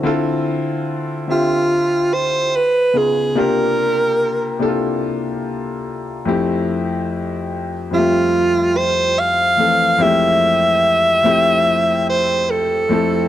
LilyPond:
<<
  \new Staff \with { instrumentName = "Alto saxophone" } { \time 4/4 \key f \major \tempo 4 = 72 r4. f'4 c''8 b'8 gis'8 | bes'4. r2 r8 | r4. f'4 c''8 f''4 | e''2~ e''8 c''8 a'4 | }
  \new Staff \with { instrumentName = "Grand piano" } { \time 4/4 \key f \major <d c' e' f' a'>4. <d c' f' g' e''>4. r8 <cis b dis' eis' gis'>8 | <c bes d' f' g'>4. <c bes d' e' f' a'>2 <f, a c' e' g'>8~ | <f, a c' e' g'>4. <f, g a c' g' e''>2 <f, e a c' a'>8 | <f, aes a c' e' g'>4. <f, a c' e' g'>2 <f, a c' e' a'>8 | }
>>